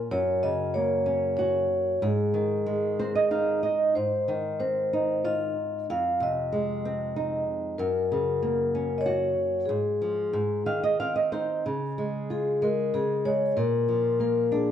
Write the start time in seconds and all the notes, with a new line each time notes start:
0.11 F#2 C#5
0.43 C#3 D#5
0.74 A#3 C#5
1.06 C#4
1.37 F#4 C#5
2.02 G#2 G#4
2.34 D#3
2.66 G#3
2.99 C4 C5
3.15 D#5
3.31 D#4 F5
3.63 D#5
3.95 G#2 C5
4.28 D#3 D#5
4.60 C4 C5
4.93 D#4
5.24 F4 D#5
5.90 F2 F5
6.20 C3 D#5
6.52 G#3
6.85 C4
7.16 D#4
7.78 F#2 A#4
8.12 C#3
8.42 A#3
8.75 C#4
8.98 C#5 D#5
9.06 F#4
9.66 G#2 G#4
10.02 F3
10.33 G#2
10.66 D#3 F5
10.83 D#5
11.00 C4 F5
11.16 D#5
11.32 D#4 C5
11.66 C#3
11.98 G#3
12.30 F4 G#4
12.62 G#3 A#4
12.94 C#3 G#4
13.25 G#3 C#5
13.57 A#2 A#4
13.89 F3
14.20 A#3 A#4
14.52 D4 G#4